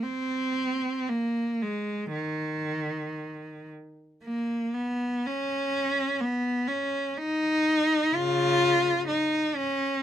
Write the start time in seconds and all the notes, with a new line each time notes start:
0.04 C4
1.08 A#3
1.62 G#3
2.13 D#3
4.23 A#3
4.74 B3
5.26 C#4
6.21 B3
6.68 C#4
7.17 D#4
8.13 C#3 F4
9.07 D#4
9.56 C#4